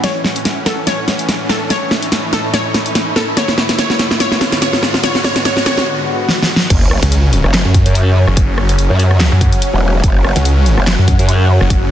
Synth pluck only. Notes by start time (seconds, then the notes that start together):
0.04 C#5
0.66 A4
0.87 C#5
1.49 A4
1.70 C#5
2.33 A4
2.54 C#5
3.16 A4
3.37 C#5
3.78 C#5
4.20 C#5
4.62 C#5
5.04 C#5
5.24 C#5
5.45 C#5
5.66 C#5